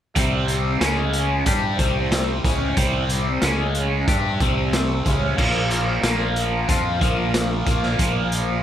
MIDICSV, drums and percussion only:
0, 0, Header, 1, 2, 480
1, 0, Start_track
1, 0, Tempo, 652387
1, 118, Time_signature, 4, 2, 24, 8
1, 6349, End_track
2, 0, Start_track
2, 0, Title_t, "Drums"
2, 118, Note_on_c, 9, 36, 103
2, 118, Note_on_c, 9, 42, 93
2, 192, Note_off_c, 9, 36, 0
2, 192, Note_off_c, 9, 42, 0
2, 354, Note_on_c, 9, 42, 73
2, 428, Note_off_c, 9, 42, 0
2, 597, Note_on_c, 9, 38, 111
2, 597, Note_on_c, 9, 42, 100
2, 671, Note_off_c, 9, 38, 0
2, 671, Note_off_c, 9, 42, 0
2, 834, Note_on_c, 9, 42, 74
2, 908, Note_off_c, 9, 42, 0
2, 1074, Note_on_c, 9, 42, 101
2, 1077, Note_on_c, 9, 36, 101
2, 1147, Note_off_c, 9, 42, 0
2, 1150, Note_off_c, 9, 36, 0
2, 1316, Note_on_c, 9, 42, 79
2, 1318, Note_on_c, 9, 36, 105
2, 1390, Note_off_c, 9, 42, 0
2, 1391, Note_off_c, 9, 36, 0
2, 1559, Note_on_c, 9, 38, 110
2, 1559, Note_on_c, 9, 42, 100
2, 1632, Note_off_c, 9, 38, 0
2, 1632, Note_off_c, 9, 42, 0
2, 1799, Note_on_c, 9, 36, 101
2, 1802, Note_on_c, 9, 42, 71
2, 1872, Note_off_c, 9, 36, 0
2, 1875, Note_off_c, 9, 42, 0
2, 2036, Note_on_c, 9, 42, 92
2, 2038, Note_on_c, 9, 36, 104
2, 2110, Note_off_c, 9, 42, 0
2, 2112, Note_off_c, 9, 36, 0
2, 2277, Note_on_c, 9, 42, 67
2, 2350, Note_off_c, 9, 42, 0
2, 2514, Note_on_c, 9, 38, 109
2, 2514, Note_on_c, 9, 42, 96
2, 2588, Note_off_c, 9, 38, 0
2, 2588, Note_off_c, 9, 42, 0
2, 2757, Note_on_c, 9, 42, 69
2, 2831, Note_off_c, 9, 42, 0
2, 3000, Note_on_c, 9, 36, 110
2, 3001, Note_on_c, 9, 42, 91
2, 3074, Note_off_c, 9, 36, 0
2, 3074, Note_off_c, 9, 42, 0
2, 3241, Note_on_c, 9, 36, 108
2, 3241, Note_on_c, 9, 42, 67
2, 3314, Note_off_c, 9, 42, 0
2, 3315, Note_off_c, 9, 36, 0
2, 3483, Note_on_c, 9, 38, 108
2, 3483, Note_on_c, 9, 42, 87
2, 3556, Note_off_c, 9, 38, 0
2, 3556, Note_off_c, 9, 42, 0
2, 3722, Note_on_c, 9, 36, 104
2, 3724, Note_on_c, 9, 42, 64
2, 3796, Note_off_c, 9, 36, 0
2, 3797, Note_off_c, 9, 42, 0
2, 3961, Note_on_c, 9, 36, 101
2, 3963, Note_on_c, 9, 49, 101
2, 4035, Note_off_c, 9, 36, 0
2, 4036, Note_off_c, 9, 49, 0
2, 4198, Note_on_c, 9, 42, 72
2, 4272, Note_off_c, 9, 42, 0
2, 4440, Note_on_c, 9, 38, 112
2, 4440, Note_on_c, 9, 42, 93
2, 4514, Note_off_c, 9, 38, 0
2, 4514, Note_off_c, 9, 42, 0
2, 4680, Note_on_c, 9, 42, 73
2, 4754, Note_off_c, 9, 42, 0
2, 4921, Note_on_c, 9, 36, 108
2, 4921, Note_on_c, 9, 42, 100
2, 4995, Note_off_c, 9, 36, 0
2, 4995, Note_off_c, 9, 42, 0
2, 5161, Note_on_c, 9, 36, 101
2, 5164, Note_on_c, 9, 42, 75
2, 5234, Note_off_c, 9, 36, 0
2, 5238, Note_off_c, 9, 42, 0
2, 5402, Note_on_c, 9, 38, 116
2, 5402, Note_on_c, 9, 42, 98
2, 5476, Note_off_c, 9, 38, 0
2, 5476, Note_off_c, 9, 42, 0
2, 5640, Note_on_c, 9, 36, 106
2, 5640, Note_on_c, 9, 42, 79
2, 5713, Note_off_c, 9, 42, 0
2, 5714, Note_off_c, 9, 36, 0
2, 5761, Note_on_c, 9, 38, 32
2, 5835, Note_off_c, 9, 38, 0
2, 5879, Note_on_c, 9, 42, 100
2, 5881, Note_on_c, 9, 36, 101
2, 5953, Note_off_c, 9, 42, 0
2, 5955, Note_off_c, 9, 36, 0
2, 6121, Note_on_c, 9, 42, 69
2, 6195, Note_off_c, 9, 42, 0
2, 6349, End_track
0, 0, End_of_file